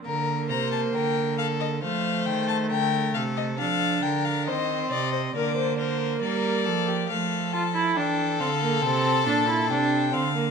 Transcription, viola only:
\new Staff \with { instrumentName = "Viola" } { \time 4/4 \key f \mixolydian \tempo 4 = 68 bes2 a2 | d'4 c'4 bes2 | a8 f'16 e'16 d'8 c'16 bes16 c'8 d'16 e'16 d'8 c'16 bes16 | }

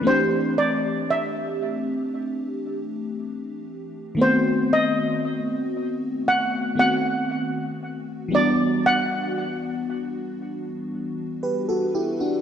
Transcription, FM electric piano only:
\new Staff \with { instrumentName = "FM electric piano" } { \time 4/4 \key e \minor \tempo 4 = 58 <e a c' d' g'>1 | <dis a b c' fis'>2~ <dis a b c' fis'>8 <dis a b c' fis'>4. | <e g b d' fis'>2. <g' b'>16 <fis' a'>16 <e' g'>16 <d' fis'>16 | }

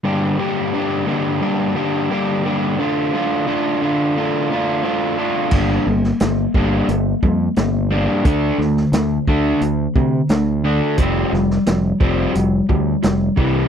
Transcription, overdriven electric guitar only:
\new Staff \with { instrumentName = "Overdriven electric guitar" } { \time 4/4 \key g \minor \tempo 4 = 88 <g, d g bes d' g'>8 <g, d g bes d' g'>8 <g, d g bes d' g'>8 <g, d g bes d' g'>8 <g, d g bes d' g'>8 <g, d g bes d' g'>8 <g, d g bes d' g'>8 <g, d g bes d' g'>8 | <d a d' f'>8 <d a d' f'>8 <d a d' f'>8 <d a d' f'>8 <d a d' f'>8 <d a d' f'>8 <d a d' f'>8 <d a d' f'>8 | <g bes d'>8 <g bes>8 <g bes>8 <g bes d'>8 <g bes>8 <g bes>8 <g bes>8 <g bes d'>8 | <d a d'>8 <d a>8 <d a>8 <d a d'>8 <d a>8 <d a>8 <d a>8 <d a d'>8 |
<f g c'>8 <f g>8 <f g>8 <f g c'>8 <f g>8 <f g>8 <f g>8 <c e g>8 | }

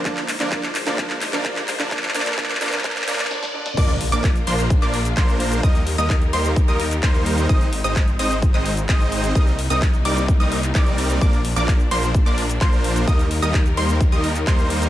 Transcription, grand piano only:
\new Staff \with { instrumentName = "Grand piano" } { \clef bass \time 4/4 \key ees \major \tempo 4 = 129 <d f bes d'>16 r8 <d f bes d'>16 <d f bes d'>16 r8 <d f bes d'>16 <d f bes d'>16 r8 <d f bes d'>16 <d f bes d'>16 r8 <d f bes d'>16 | <d f bes d'>16 r16 <d f bes d'>16 r16 <d f bes d'>16 r16 <d f bes d'>16 r16 <d f bes d'>16 r16 <d f bes d'>16 r16 <d f bes d'>16 r16 <d f bes d'>16 r16 | r1 | r1 |
r1 | r1 | r1 | r1 | }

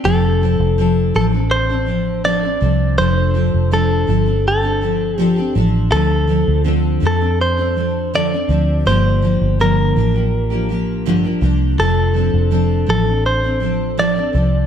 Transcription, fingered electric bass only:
\new Staff \with { instrumentName = "Fingered electric bass" } { \clef bass \time 4/4 \key f \major \tempo 4 = 82 f,,8. f,,8. a,,2 c,8 | f,,8. f,,8. g,,2 a,,8 | d,8. d,8. f,2 d,8 | g,,8. g,,8. a,,2 c,8 |
f,,8. f,,8. a,,2 c,8 | }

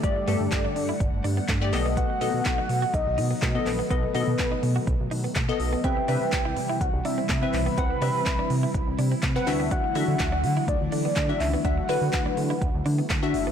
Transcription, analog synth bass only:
\new Staff \with { instrumentName = "Analog synth bass" } { \clef bass \time 4/4 \key b \phrygian \tempo 4 = 124 g,,8 g,16 g,16 g,,8 g,8 g,,16 g,,16 g,8 g,8 b,,8~ | b,,8 b,16 b,16 b,,8 b,8 b,,16 b,,16 b,8 b,8 bes,,8 | b,,8 b,16 b,16 b,,8 b,8 b,,16 b,,16 b,8 b,8 b,,8 | c,8 c16 c16 c,8 c8 c,16 c,16 c8 c8 b,,8 |
c,8 c16 c16 c,8 c8 c,16 c,16 c8 c8 d,8~ | d,8 d16 d16 d,8 d8 d,16 d,16 d8 d8 cis,8 | d,8 d16 d16 d,8 d8 d,16 d,16 d8 d8 fis,,8 | }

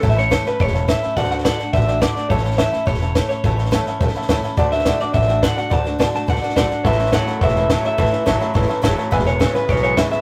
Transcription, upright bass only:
\new Staff \with { instrumentName = "Upright bass" } { \clef bass \time 4/4 \key a \major \tempo 4 = 211 a,,4. r8 e,,4. r8 | d,4. r8 a,,4. r8 | a,,4. r8 e,,4. r8 | a,,4. r8 b,,8 r8 cis,8 r8 |
d,4. r8 a,,4. r8 | d,4. r8 cis,8 r8 b,,8 r8 | a,,4. r8 e,,4. r8 | a,,8 r8 a,,8 r8 g,,8 r8 fis,,8 r8 |
e,,4. r8 b,,4. r8 | }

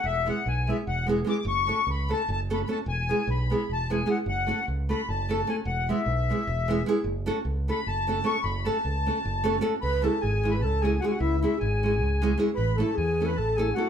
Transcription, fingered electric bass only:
\new Staff \with { instrumentName = "Fingered electric bass" } { \clef bass \time 7/8 \key fis \minor \tempo 4 = 151 e,,4 b,,4 e,,4. | fis,,4 cis,4 fis,,4. | e,,4 b,,4 e,,4. | fis,,4 cis,4 fis,,4. |
e,,4 b,,4 e,,4. | fis,,4 cis,4 fis,,4. | fis,,4 cis,4 fis,,4. | \key cis \minor cis,4 gis,,4 cis,4. |
cis,4 gis,,4 cis,4. | a,,4 e,4 a,,4. | }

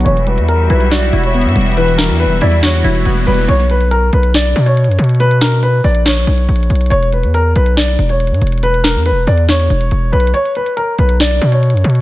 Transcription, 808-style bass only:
\new Staff \with { instrumentName = "808-style bass" } { \clef bass \time 4/4 \key b \minor \tempo 4 = 140 e,,8. e,8. b,,4 e,,8. g,16 e,,8~ | e,,8. e,16. e,,16. e,4 e,,8 e,,8 e,,8 | b,,4. b,,4 b,8. fis,16 b,8~ | b,4. ais,,4 b,,8 ais,,8 b,,8 |
e,,8. e,8. b,,4 e,,8. g,16 e,,8~ | e,,8. e,16. e,,16. e,4 e,,8 e,,8 b,,8 | r4. b,,4 b,8. fis,16 b,8 | }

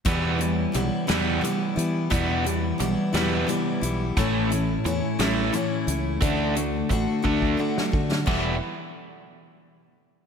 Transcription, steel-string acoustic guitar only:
\new Staff \with { instrumentName = "Steel-string acoustic guitar" } { \time 6/8 \key e \dorian \tempo 4. = 58 <e, b, e g b e'>8 <e g b e'>8 <e g b e'>8 <e, b, e g b e'>8 <e g b e'>8 <e g b e'>8 | <e, b, e g b e'>8 <e g b e'>8 <e g b e'>8 <e, b, e g b e'>8 <e g b e'>8 <e g b e'>8 | <a, e a cis' e'>8 <a cis' e'>8 <e a cis' e'>8 <a, e a cis' e'>8 <e a cis' e'>8 <a cis' e'>8 | <d a d' fis'>8 <a d' fis'>8 <d a d' fis'>8 <d a d' fis'>8 <d a d' fis'>8 <a d' fis'>8 |
<e, b, e g b g'>8 r2 r8 | }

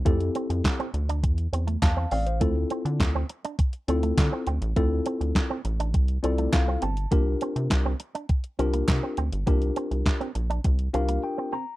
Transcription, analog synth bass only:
\new Staff \with { instrumentName = "Analog synth bass" } { \clef bass \time 4/4 \key d \minor \tempo 4 = 102 f,8 r16 f,16 r8 d,8 e,8 e,8 e,8 a,,8 | d,8 r16 d16 d,8 r4 d,8 d16 r16 d,16 a,,16 | d,8 r16 d,16 r8 a,,8 c,8 c,8 c,8 g,,8 | c,8 r16 c16 c,8 r4 c,8 c16 r16 d,16 g,,16 |
c,8 r16 c,16 r8 bes,,8 c,8 c,8 r4 | }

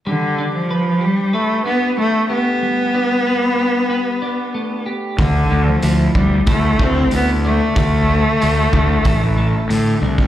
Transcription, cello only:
\new Staff \with { instrumentName = "Cello" } { \time 4/4 \key g \mixolydian \tempo 4 = 93 d8. f8. g8 a8 b8 a8 b8~ | b2.~ b8 r8 | d8. f8. g8 a8 c'8 b8 a8~ | a2.~ a8 r8 | }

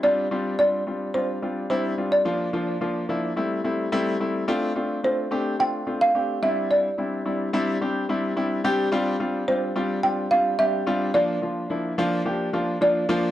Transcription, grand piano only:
\new Staff \with { instrumentName = "Grand piano" } { \time 4/4 \key d \minor \tempo 4 = 108 <g c' d' f'>8 <g c' d' f'>8 <g c' d' f'>8 <g c' d' f'>8 <g c' d' f'>8 <g c' d' f'>8 <g c' d' e'>8 <g c' d' f'>8 | <f bes d' f'>8 <f bes d' f'>8 <f bes d' f'>8 <f bes d' e'>8 <g a c' e'>8 <g a c' e'>8 <g a c' e'>8 <g a c' e'>8 | <a c' d' f'>8 <a c' d' f'>8 <a c' d' f'>8 <a c' d' g'>8 <a c' d' f'>8 <a c' d' f'>8 <a c' d' g'>8 <g c' d' e'>8~ | <g c' d' e'>8 <g c' d' e'>8 <g c' d' e'>8 <g c' d' e'>8 <g c' d' g'>8 <g c' d' e'>8 <g c' d' e'>8 <g c' d' g'>8 |
<g c' d' f'>8 <g c' d' f'>8 <g c' d' f'>8 <g c' d' f'>8 <g c' d' f'>8 <g c' d' f'>8 <g c' d' g'>8 <g c' d' f'>8 | <f bes d' f'>8 <f bes d' f'>8 <f bes d' e'>8 <f bes d' f'>8 <f bes d' g'>8 <f bes d' f'>8 <f bes d' f'>8 <f bes d' f'>8 | }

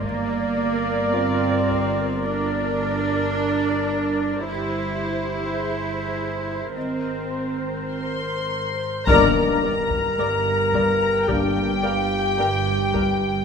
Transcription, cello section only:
\new Staff \with { instrumentName = "Cello section" } { \time 4/4 \key g \phrygian \tempo 4 = 54 bes4 c'4 d'2 | e'2 c'4 r4 | g,4 g,4 g,4 g,4 | }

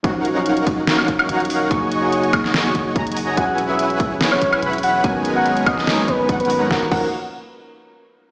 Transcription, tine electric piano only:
\new Staff \with { instrumentName = "Tine electric piano" } { \time 4/4 \key ees \phrygian \tempo 4 = 144 <f des' ees' ges'>8. <ges des' ees' ges'>2.~ <ges des' ees' ges'>16 | <ges bes ees' aes'>8. <ges bes ees' aes'>2.~ <ges bes ees' aes'>16 | <fis cis' e' gis'>8. <fis cis' e' gis'>2.~ <fis cis' e' gis'>16 | <ges ces' des' bes'>8. <ges ces' des' bes''>2.~ <ges ces' des' bes''>16 |
<f des' ees' ges'>16 r16 <f des' ees' ges'>8 r2. | }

